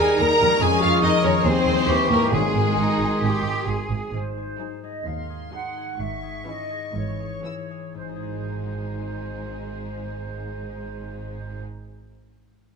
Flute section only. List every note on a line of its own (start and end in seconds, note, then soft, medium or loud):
0.00 0.58 A#5 medium
0.61 1.43 C#6 medium
1.44 1.88 C6 medium
1.88 2.33 C#6 medium
2.34 3.88 C6 medium
4.13 4.79 C5 medium
4.82 5.06 D#5 soft
5.05 5.52 F5 medium
5.53 5.98 F#5 medium
5.99 6.46 E5 medium
6.46 6.94 D#5 medium
6.97 7.95 C#5 medium
7.96 11.62 C5 soft